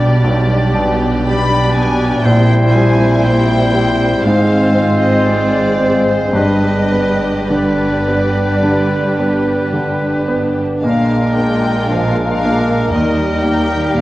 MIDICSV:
0, 0, Header, 1, 10, 480
1, 0, Start_track
1, 0, Tempo, 1000000
1, 1081, Time_signature, 4, 2, 24, 8
1, 2530, Tempo, 1079137
1, 3010, Tempo, 1134216
1, 3970, Tempo, 1100917
1, 4930, Tempo, 1054482
1, 5890, Tempo, 986842
1, 6417, End_track
2, 0, Start_track
2, 0, Title_t, "Violin section"
2, 0, Program_c, 0, 48
2, 0, Note_on_c, 0, 74, 50
2, 352, Note_off_c, 0, 74, 0
2, 611, Note_on_c, 0, 83, 61
2, 831, Note_off_c, 0, 83, 0
2, 850, Note_on_c, 0, 80, 62
2, 1080, Note_on_c, 0, 79, 52
2, 1083, Note_off_c, 0, 80, 0
2, 1315, Note_on_c, 0, 80, 56
2, 1318, Note_off_c, 0, 79, 0
2, 1556, Note_on_c, 0, 79, 65
2, 1557, Note_off_c, 0, 80, 0
2, 2039, Note_off_c, 0, 79, 0
2, 2041, Note_on_c, 0, 77, 56
2, 2406, Note_on_c, 0, 75, 41
2, 2407, Note_off_c, 0, 77, 0
2, 2528, Note_off_c, 0, 75, 0
2, 2530, Note_on_c, 0, 74, 47
2, 2885, Note_on_c, 0, 72, 43
2, 2887, Note_off_c, 0, 74, 0
2, 3005, Note_on_c, 0, 75, 52
2, 3007, Note_off_c, 0, 72, 0
2, 3495, Note_off_c, 0, 75, 0
2, 3502, Note_on_c, 0, 74, 41
2, 4453, Note_off_c, 0, 74, 0
2, 4925, Note_on_c, 0, 77, 52
2, 5156, Note_off_c, 0, 77, 0
2, 5174, Note_on_c, 0, 79, 50
2, 5417, Note_on_c, 0, 77, 59
2, 5420, Note_off_c, 0, 79, 0
2, 5888, Note_off_c, 0, 77, 0
2, 5893, Note_on_c, 0, 75, 52
2, 6127, Note_off_c, 0, 75, 0
2, 6133, Note_on_c, 0, 79, 57
2, 6371, Note_off_c, 0, 79, 0
2, 6375, Note_on_c, 0, 77, 57
2, 6417, Note_off_c, 0, 77, 0
2, 6417, End_track
3, 0, Start_track
3, 0, Title_t, "Oboe"
3, 0, Program_c, 1, 68
3, 0, Note_on_c, 1, 74, 36
3, 480, Note_off_c, 1, 74, 0
3, 618, Note_on_c, 1, 74, 37
3, 1082, Note_on_c, 1, 72, 39
3, 1089, Note_off_c, 1, 74, 0
3, 1554, Note_off_c, 1, 72, 0
3, 1557, Note_on_c, 1, 72, 42
3, 2030, Note_off_c, 1, 72, 0
3, 2043, Note_on_c, 1, 72, 42
3, 3015, Note_on_c, 1, 71, 35
3, 3021, Note_off_c, 1, 72, 0
3, 3423, Note_off_c, 1, 71, 0
3, 3495, Note_on_c, 1, 71, 35
3, 4765, Note_off_c, 1, 71, 0
3, 4931, Note_on_c, 1, 70, 35
3, 5403, Note_off_c, 1, 70, 0
3, 5419, Note_on_c, 1, 70, 40
3, 5880, Note_off_c, 1, 70, 0
3, 5888, Note_on_c, 1, 70, 37
3, 6417, Note_off_c, 1, 70, 0
3, 6417, End_track
4, 0, Start_track
4, 0, Title_t, "Violin section"
4, 0, Program_c, 2, 48
4, 0, Note_on_c, 2, 67, 43
4, 0, Note_on_c, 2, 74, 43
4, 1060, Note_off_c, 2, 67, 0
4, 1060, Note_off_c, 2, 74, 0
4, 1085, Note_on_c, 2, 64, 49
4, 1088, Note_on_c, 2, 72, 44
4, 2041, Note_on_c, 2, 65, 45
4, 2042, Note_off_c, 2, 64, 0
4, 2997, Note_off_c, 2, 72, 0
4, 3012, Note_off_c, 2, 65, 0
4, 3013, Note_on_c, 2, 71, 37
4, 3015, Note_on_c, 2, 67, 37
4, 4823, Note_off_c, 2, 71, 0
4, 4824, Note_off_c, 2, 67, 0
4, 4929, Note_on_c, 2, 70, 39
4, 4932, Note_on_c, 2, 65, 39
4, 5873, Note_off_c, 2, 65, 0
4, 5893, Note_on_c, 2, 67, 40
4, 6417, Note_off_c, 2, 67, 0
4, 6417, Note_off_c, 2, 70, 0
4, 6417, End_track
5, 0, Start_track
5, 0, Title_t, "Clarinet"
5, 0, Program_c, 3, 71
5, 0, Note_on_c, 3, 62, 40
5, 479, Note_off_c, 3, 62, 0
5, 611, Note_on_c, 3, 62, 41
5, 1086, Note_on_c, 3, 64, 44
5, 1093, Note_off_c, 3, 62, 0
5, 1561, Note_off_c, 3, 64, 0
5, 1569, Note_on_c, 3, 64, 44
5, 2047, Note_on_c, 3, 60, 45
5, 2054, Note_off_c, 3, 64, 0
5, 3010, Note_on_c, 3, 62, 37
5, 3016, Note_off_c, 3, 60, 0
5, 3497, Note_off_c, 3, 62, 0
5, 3502, Note_on_c, 3, 62, 39
5, 4768, Note_off_c, 3, 62, 0
5, 4925, Note_on_c, 3, 62, 37
5, 5400, Note_off_c, 3, 62, 0
5, 5421, Note_on_c, 3, 62, 42
5, 5881, Note_off_c, 3, 62, 0
5, 5884, Note_on_c, 3, 63, 48
5, 6417, Note_off_c, 3, 63, 0
5, 6417, End_track
6, 0, Start_track
6, 0, Title_t, "Viola section"
6, 0, Program_c, 4, 48
6, 0, Note_on_c, 4, 55, 33
6, 0, Note_on_c, 4, 62, 37
6, 1059, Note_off_c, 4, 62, 0
6, 1080, Note_on_c, 4, 60, 48
6, 2018, Note_off_c, 4, 55, 0
6, 2038, Note_on_c, 4, 56, 34
6, 2993, Note_off_c, 4, 60, 0
6, 3008, Note_on_c, 4, 62, 34
6, 3480, Note_off_c, 4, 56, 0
6, 3494, Note_on_c, 4, 55, 35
6, 4837, Note_off_c, 4, 55, 0
6, 4931, Note_on_c, 4, 56, 37
6, 5870, Note_off_c, 4, 62, 0
6, 5872, Note_off_c, 4, 56, 0
6, 5887, Note_on_c, 4, 63, 34
6, 5888, Note_on_c, 4, 55, 34
6, 6417, Note_off_c, 4, 55, 0
6, 6417, Note_off_c, 4, 63, 0
6, 6417, End_track
7, 0, Start_track
7, 0, Title_t, "Bassoon"
7, 0, Program_c, 5, 70
7, 0, Note_on_c, 5, 55, 36
7, 462, Note_off_c, 5, 55, 0
7, 610, Note_on_c, 5, 55, 43
7, 1062, Note_off_c, 5, 55, 0
7, 1086, Note_on_c, 5, 55, 44
7, 1552, Note_off_c, 5, 55, 0
7, 1566, Note_on_c, 5, 55, 37
7, 2045, Note_on_c, 5, 56, 42
7, 2052, Note_off_c, 5, 55, 0
7, 3013, Note_off_c, 5, 56, 0
7, 3017, Note_on_c, 5, 55, 32
7, 3428, Note_off_c, 5, 55, 0
7, 3500, Note_on_c, 5, 55, 32
7, 4767, Note_off_c, 5, 55, 0
7, 4929, Note_on_c, 5, 56, 37
7, 5402, Note_off_c, 5, 56, 0
7, 5420, Note_on_c, 5, 56, 40
7, 5887, Note_on_c, 5, 55, 40
7, 5894, Note_off_c, 5, 56, 0
7, 6417, Note_off_c, 5, 55, 0
7, 6417, End_track
8, 0, Start_track
8, 0, Title_t, "Grand piano"
8, 0, Program_c, 6, 0
8, 0, Control_c, 6, 64, 127
8, 0, Note_on_c, 6, 35, 41
8, 0, Note_on_c, 6, 47, 34
8, 0, Note_on_c, 6, 55, 35
8, 106, Note_off_c, 6, 35, 0
8, 115, Note_on_c, 6, 35, 37
8, 274, Note_off_c, 6, 55, 0
8, 359, Note_off_c, 6, 47, 0
8, 359, Note_on_c, 6, 47, 36
8, 611, Note_on_c, 6, 55, 36
8, 747, Note_off_c, 6, 47, 0
8, 844, Note_on_c, 6, 47, 40
8, 988, Note_off_c, 6, 55, 0
8, 1055, Note_off_c, 6, 35, 0
8, 1080, Note_off_c, 6, 47, 0
8, 1083, Note_on_c, 6, 34, 57
8, 1089, Control_c, 6, 64, 0
8, 1152, Control_c, 6, 64, 127
8, 1316, Note_on_c, 6, 55, 34
8, 1556, Note_on_c, 6, 46, 31
8, 1702, Note_off_c, 6, 55, 0
8, 1793, Note_on_c, 6, 55, 34
8, 1943, Note_off_c, 6, 46, 0
8, 2022, Note_off_c, 6, 34, 0
8, 2037, Note_off_c, 6, 55, 0
8, 2041, Note_on_c, 6, 44, 39
8, 2049, Control_c, 6, 64, 0
8, 2135, Control_c, 6, 64, 127
8, 2277, Note_on_c, 6, 60, 31
8, 2530, Note_on_c, 6, 56, 31
8, 2669, Note_off_c, 6, 60, 0
8, 2761, Note_on_c, 6, 60, 34
8, 2911, Note_off_c, 6, 56, 0
8, 2994, Note_off_c, 6, 44, 0
8, 3001, Note_on_c, 6, 43, 42
8, 3009, Note_off_c, 6, 60, 0
8, 3020, Control_c, 6, 64, 0
8, 3109, Control_c, 6, 64, 127
8, 3249, Note_on_c, 6, 59, 26
8, 3496, Note_on_c, 6, 50, 29
8, 3640, Note_off_c, 6, 59, 0
8, 3741, Note_on_c, 6, 59, 28
8, 3876, Note_off_c, 6, 50, 0
8, 3950, Note_off_c, 6, 43, 0
8, 3975, Note_on_c, 6, 50, 28
8, 4119, Note_off_c, 6, 59, 0
8, 4219, Note_on_c, 6, 59, 28
8, 4358, Note_off_c, 6, 50, 0
8, 4455, Note_on_c, 6, 50, 26
8, 4597, Note_off_c, 6, 59, 0
8, 4693, Note_on_c, 6, 59, 29
8, 4838, Note_off_c, 6, 50, 0
8, 4932, Note_off_c, 6, 59, 0
8, 4937, Note_on_c, 6, 46, 45
8, 4940, Control_c, 6, 64, 0
8, 5020, Control_c, 6, 64, 127
8, 5186, Note_on_c, 6, 58, 32
8, 5425, Note_on_c, 6, 53, 31
8, 5570, Note_off_c, 6, 58, 0
8, 5675, Note_on_c, 6, 58, 35
8, 5801, Note_off_c, 6, 53, 0
8, 5875, Note_off_c, 6, 46, 0
8, 5896, Note_on_c, 6, 39, 41
8, 5898, Note_off_c, 6, 58, 0
8, 5899, Control_c, 6, 64, 0
8, 5974, Control_c, 6, 64, 127
8, 6139, Note_on_c, 6, 58, 33
8, 6377, Note_on_c, 6, 46, 37
8, 6417, Note_off_c, 6, 39, 0
8, 6417, Note_off_c, 6, 46, 0
8, 6417, Note_off_c, 6, 58, 0
8, 6417, End_track
9, 0, Start_track
9, 0, Title_t, "Cello section"
9, 0, Program_c, 7, 48
9, 0, Note_on_c, 7, 47, 42
9, 1060, Note_off_c, 7, 47, 0
9, 1076, Note_on_c, 7, 46, 50
9, 2019, Note_off_c, 7, 46, 0
9, 2037, Note_on_c, 7, 44, 45
9, 3006, Note_on_c, 7, 43, 40
9, 3010, Note_off_c, 7, 44, 0
9, 4820, Note_off_c, 7, 43, 0
9, 4932, Note_on_c, 7, 46, 46
9, 5873, Note_off_c, 7, 46, 0
9, 5885, Note_on_c, 7, 39, 40
9, 6417, Note_off_c, 7, 39, 0
9, 6417, End_track
10, 0, Start_track
10, 0, Title_t, "Double bass section"
10, 0, Program_c, 8, 48
10, 0, Note_on_c, 8, 35, 37
10, 1062, Note_off_c, 8, 35, 0
10, 1081, Note_on_c, 8, 34, 44
10, 2021, Note_off_c, 8, 34, 0
10, 2040, Note_on_c, 8, 32, 42
10, 3011, Note_off_c, 8, 32, 0
10, 3011, Note_on_c, 8, 31, 35
10, 4822, Note_off_c, 8, 31, 0
10, 4929, Note_on_c, 8, 34, 36
10, 5871, Note_off_c, 8, 34, 0
10, 5887, Note_on_c, 8, 39, 42
10, 6417, Note_off_c, 8, 39, 0
10, 6417, End_track
0, 0, End_of_file